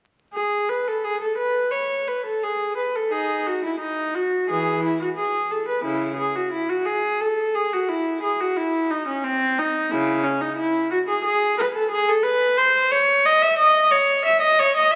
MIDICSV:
0, 0, Header, 1, 2, 480
1, 0, Start_track
1, 0, Key_signature, 4, "major"
1, 0, Tempo, 694444
1, 246, Time_signature, 4, 2, 24, 8
1, 2643, Tempo, 681044
1, 5523, Tempo, 668896
1, 7923, Key_signature, 4, "minor"
1, 10577, End_track
2, 0, Start_track
2, 0, Title_t, "Viola"
2, 0, Program_c, 0, 41
2, 233, Note_on_c, 0, 68, 70
2, 465, Note_off_c, 0, 68, 0
2, 478, Note_on_c, 0, 71, 71
2, 603, Note_off_c, 0, 71, 0
2, 608, Note_on_c, 0, 69, 65
2, 721, Note_on_c, 0, 68, 75
2, 727, Note_off_c, 0, 69, 0
2, 838, Note_on_c, 0, 69, 66
2, 842, Note_off_c, 0, 68, 0
2, 952, Note_on_c, 0, 71, 76
2, 957, Note_off_c, 0, 69, 0
2, 1185, Note_on_c, 0, 73, 69
2, 1190, Note_off_c, 0, 71, 0
2, 1433, Note_off_c, 0, 73, 0
2, 1435, Note_on_c, 0, 71, 69
2, 1559, Note_off_c, 0, 71, 0
2, 1562, Note_on_c, 0, 69, 65
2, 1681, Note_off_c, 0, 69, 0
2, 1681, Note_on_c, 0, 68, 69
2, 1918, Note_on_c, 0, 71, 65
2, 1923, Note_off_c, 0, 68, 0
2, 2038, Note_off_c, 0, 71, 0
2, 2043, Note_on_c, 0, 69, 61
2, 2146, Note_on_c, 0, 63, 60
2, 2149, Note_on_c, 0, 68, 70
2, 2163, Note_off_c, 0, 69, 0
2, 2376, Note_off_c, 0, 63, 0
2, 2396, Note_off_c, 0, 68, 0
2, 2396, Note_on_c, 0, 66, 70
2, 2519, Note_off_c, 0, 66, 0
2, 2520, Note_on_c, 0, 64, 57
2, 2627, Note_on_c, 0, 63, 70
2, 2638, Note_off_c, 0, 64, 0
2, 2870, Note_off_c, 0, 63, 0
2, 2870, Note_on_c, 0, 66, 74
2, 3116, Note_off_c, 0, 66, 0
2, 3116, Note_on_c, 0, 52, 57
2, 3119, Note_on_c, 0, 68, 73
2, 3341, Note_off_c, 0, 52, 0
2, 3355, Note_off_c, 0, 68, 0
2, 3357, Note_on_c, 0, 64, 72
2, 3476, Note_off_c, 0, 64, 0
2, 3478, Note_on_c, 0, 66, 65
2, 3527, Note_off_c, 0, 66, 0
2, 3589, Note_on_c, 0, 68, 77
2, 3830, Note_off_c, 0, 68, 0
2, 3831, Note_on_c, 0, 69, 71
2, 3954, Note_on_c, 0, 71, 67
2, 3956, Note_off_c, 0, 69, 0
2, 4061, Note_on_c, 0, 49, 65
2, 4065, Note_on_c, 0, 64, 69
2, 4074, Note_off_c, 0, 71, 0
2, 4293, Note_off_c, 0, 49, 0
2, 4294, Note_on_c, 0, 68, 72
2, 4307, Note_off_c, 0, 64, 0
2, 4424, Note_off_c, 0, 68, 0
2, 4428, Note_on_c, 0, 66, 67
2, 4547, Note_on_c, 0, 64, 77
2, 4554, Note_off_c, 0, 66, 0
2, 4664, Note_on_c, 0, 66, 76
2, 4671, Note_off_c, 0, 64, 0
2, 4776, Note_on_c, 0, 68, 85
2, 4792, Note_off_c, 0, 66, 0
2, 5025, Note_on_c, 0, 69, 77
2, 5029, Note_off_c, 0, 68, 0
2, 5268, Note_on_c, 0, 68, 79
2, 5274, Note_off_c, 0, 69, 0
2, 5395, Note_off_c, 0, 68, 0
2, 5397, Note_on_c, 0, 66, 77
2, 5506, Note_on_c, 0, 64, 85
2, 5519, Note_off_c, 0, 66, 0
2, 5752, Note_on_c, 0, 68, 81
2, 5755, Note_off_c, 0, 64, 0
2, 5875, Note_off_c, 0, 68, 0
2, 5876, Note_on_c, 0, 66, 72
2, 5991, Note_on_c, 0, 64, 77
2, 5999, Note_off_c, 0, 66, 0
2, 6234, Note_off_c, 0, 64, 0
2, 6237, Note_on_c, 0, 63, 78
2, 6358, Note_off_c, 0, 63, 0
2, 6362, Note_on_c, 0, 61, 72
2, 6477, Note_on_c, 0, 60, 85
2, 6478, Note_off_c, 0, 61, 0
2, 6720, Note_off_c, 0, 60, 0
2, 6725, Note_on_c, 0, 63, 85
2, 6957, Note_on_c, 0, 64, 80
2, 6959, Note_on_c, 0, 49, 75
2, 6962, Note_off_c, 0, 63, 0
2, 7181, Note_off_c, 0, 49, 0
2, 7193, Note_on_c, 0, 61, 78
2, 7196, Note_off_c, 0, 64, 0
2, 7314, Note_off_c, 0, 61, 0
2, 7318, Note_on_c, 0, 63, 78
2, 7430, Note_on_c, 0, 64, 87
2, 7438, Note_off_c, 0, 63, 0
2, 7671, Note_off_c, 0, 64, 0
2, 7677, Note_on_c, 0, 66, 88
2, 7727, Note_off_c, 0, 66, 0
2, 7800, Note_on_c, 0, 68, 77
2, 7906, Note_off_c, 0, 68, 0
2, 7915, Note_on_c, 0, 68, 88
2, 8155, Note_off_c, 0, 68, 0
2, 8156, Note_on_c, 0, 71, 90
2, 8205, Note_off_c, 0, 71, 0
2, 8285, Note_on_c, 0, 69, 73
2, 8394, Note_on_c, 0, 68, 102
2, 8401, Note_off_c, 0, 69, 0
2, 8515, Note_off_c, 0, 68, 0
2, 8522, Note_on_c, 0, 69, 93
2, 8624, Note_on_c, 0, 71, 103
2, 8642, Note_off_c, 0, 69, 0
2, 8874, Note_off_c, 0, 71, 0
2, 8874, Note_on_c, 0, 72, 98
2, 9110, Note_on_c, 0, 73, 102
2, 9120, Note_off_c, 0, 72, 0
2, 9357, Note_on_c, 0, 75, 113
2, 9359, Note_off_c, 0, 73, 0
2, 9480, Note_on_c, 0, 76, 99
2, 9482, Note_off_c, 0, 75, 0
2, 9594, Note_on_c, 0, 75, 107
2, 9602, Note_off_c, 0, 76, 0
2, 9830, Note_on_c, 0, 73, 104
2, 9833, Note_off_c, 0, 75, 0
2, 10074, Note_off_c, 0, 73, 0
2, 10076, Note_on_c, 0, 76, 99
2, 10192, Note_on_c, 0, 75, 100
2, 10195, Note_off_c, 0, 76, 0
2, 10314, Note_off_c, 0, 75, 0
2, 10316, Note_on_c, 0, 73, 114
2, 10440, Note_off_c, 0, 73, 0
2, 10445, Note_on_c, 0, 75, 101
2, 10549, Note_on_c, 0, 76, 107
2, 10562, Note_off_c, 0, 75, 0
2, 10577, Note_off_c, 0, 76, 0
2, 10577, End_track
0, 0, End_of_file